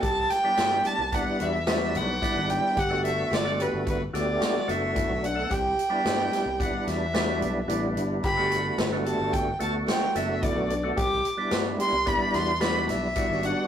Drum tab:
HH |xxxxxxxxxx|xxxxxxxxxx|xxxxxxxxxx|xxxxxxxxxx|
SD |-oo---o-o-|--o--oo---|--oo-oo---|--o---oo--|
BD |o---o---o-|o---o---o-|o---o-----|o---o---o-|

HH |xxxxxxxxxx|
SD |--o--ooo--|
BD |o---o---o-|